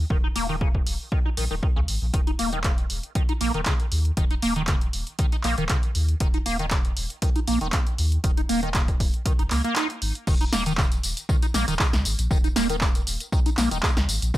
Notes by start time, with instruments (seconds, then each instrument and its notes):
0.10 sub bass D#1, acid bass D#3, kick
0.24 acid bass D#4
0.36 sub bass D#1, acid bass A#3, open hi-hat
0.49 acid bass D#3
0.61 acid bass C#3, kick
0.75 kick
0.86 sub bass D#1, open hi-hat
1.12 acid bass D#3, kick
1.25 acid bass D#4
1.37 sub bass A#1, acid bass D#3, open hi-hat
1.51 sub bass D#1, acid bass D#3
1.63 acid bass D#3, kick
1.76 sub bass C#2, acid bass C#3
1.88 sub bass G#1, open hi-hat
2.02 sub bass A#1
2.14 sub bass D#1, acid bass D#3, kick, closed hi-hat
2.27 acid bass D#4, closed hi-hat
2.39 sub bass D#1, acid bass A#3, open hi-hat
2.53 acid bass D#3, closed hi-hat
2.64 acid bass C#3, kick, clap, closed hi-hat
2.78 closed hi-hat
2.90 sub bass D#1, open hi-hat
3.03 closed hi-hat
3.15 acid bass D#3, kick, closed hi-hat
3.29 acid bass D#4, closed hi-hat
3.41 sub bass A#1, acid bass A#3, open hi-hat
3.54 sub bass D#1, acid bass D#3, closed hi-hat
3.66 acid bass C#3, kick, clap, closed hi-hat
3.80 closed hi-hat
3.92 sub bass D#2, open hi-hat
4.05 closed hi-hat
4.17 sub bass D#1, acid bass D#3, kick, closed hi-hat
4.31 acid bass D#4, closed hi-hat
4.42 sub bass D#1, acid bass A#3, open hi-hat
4.56 acid bass D#3, closed hi-hat
4.67 acid bass C#3, kick, clap, closed hi-hat
4.81 closed hi-hat
4.93 sub bass D#1, open hi-hat
5.07 closed hi-hat
5.19 acid bass D#3, kick, closed hi-hat
5.32 acid bass D#4, closed hi-hat
5.44 sub bass A#1, acid bass A#3, clap, open hi-hat
5.58 sub bass D#1, acid bass D#3, closed hi-hat
5.69 acid bass C#3, kick, clap, closed hi-hat
5.83 closed hi-hat
5.95 sub bass D#2, open hi-hat
6.09 closed hi-hat
6.20 sub bass D#1, acid bass D#3, kick, closed hi-hat
6.34 acid bass D#4, closed hi-hat
6.46 sub bass D#1, acid bass A#3, open hi-hat
6.59 acid bass D#3, closed hi-hat
6.71 acid bass C#3, kick, clap, closed hi-hat
6.85 closed hi-hat
6.97 sub bass D#1, open hi-hat
7.10 closed hi-hat
7.22 acid bass D#3, kick, closed hi-hat
7.36 acid bass D#4, closed hi-hat
7.48 sub bass A#1, acid bass A#3, open hi-hat
7.61 sub bass D#1, acid bass D#3, closed hi-hat
7.73 acid bass C#3, kick, clap, closed hi-hat
7.87 closed hi-hat
7.98 sub bass D#2, open hi-hat
8.12 closed hi-hat
8.24 sub bass D#1, acid bass D#3, kick, closed hi-hat
8.37 acid bass D#4, closed hi-hat
8.49 sub bass D#1, acid bass A#3, open hi-hat
8.63 acid bass D#3, closed hi-hat
8.74 acid bass C#3, kick, clap, closed hi-hat
8.88 kick, closed hi-hat
9.00 sub bass D#1, kick, open hi-hat
9.14 closed hi-hat
9.25 acid bass D#3, kick, closed hi-hat
9.39 sub bass F#1, acid bass D#4, closed hi-hat
9.51 sub bass C#2, acid bass A#3, clap, open hi-hat
9.64 acid bass A#3, closed hi-hat
9.76 acid bass D#4, clap, closed hi-hat
9.90 closed hi-hat
10.02 sub bass G#1, open hi-hat
10.15 closed hi-hat
10.27 sub bass D#1, acid bass D#3, kick, crash, tambourine
10.41 acid bass D#4, closed hi-hat, tambourine
10.53 sub bass D#1, acid bass A#3, snare, open hi-hat, tambourine
10.66 acid bass D#3, closed hi-hat, tambourine
10.78 acid bass C#3, kick, clap, tambourine
10.92 closed hi-hat, tambourine
11.03 sub bass D#1, open hi-hat, tambourine
11.17 closed hi-hat, tambourine
11.29 acid bass D#3, kick, tambourine
11.42 acid bass D#4, closed hi-hat, tambourine
11.54 sub bass A#1, acid bass A#3, snare, open hi-hat, tambourine
11.68 sub bass D#1, acid bass D#3, closed hi-hat, tambourine
11.79 acid bass C#3, kick, clap, tambourine
11.93 sub bass C#2, snare, closed hi-hat, tambourine
12.05 sub bass G#1, open hi-hat, tambourine
12.19 sub bass A#1, closed hi-hat, tambourine
12.31 sub bass D#1, acid bass D#3, kick, tambourine
12.44 acid bass D#4, closed hi-hat, tambourine
12.56 sub bass D#1, acid bass A#3, snare, open hi-hat, tambourine
12.70 acid bass D#3, closed hi-hat, tambourine
12.81 acid bass C#3, kick, clap, tambourine
12.95 closed hi-hat, tambourine
13.07 sub bass D#1, open hi-hat, tambourine
13.20 closed hi-hat, tambourine
13.32 acid bass D#3, kick, tambourine
13.46 acid bass D#4, closed hi-hat, tambourine
13.57 sub bass A#1, acid bass A#3, snare, clap, open hi-hat, tambourine
13.71 sub bass D#1, acid bass D#3, closed hi-hat, tambourine
13.83 acid bass C#3, kick, clap, tambourine
13.96 sub bass C#2, snare, closed hi-hat, tambourine
14.08 sub bass G#1, open hi-hat, tambourine
14.22 sub bass A#1, closed hi-hat, tambourine
14.34 sub bass D#1, acid bass D#3, kick